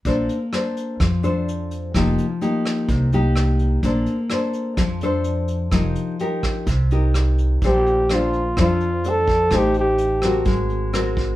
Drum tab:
HH |xxxxxxxx|xxxxxxxx|xxxxxxxx|xxxxxxxx|
SD |--r-r---|r--r--r-|--r-r---|r--r--r-|
BD |o---o---|o---o---|o---o---|o--oo---|

HH |xxxxxxxx|xxxxxxxx|
SD |--r-r---|r--r--r-|
BD |o---o--o|o---o--o|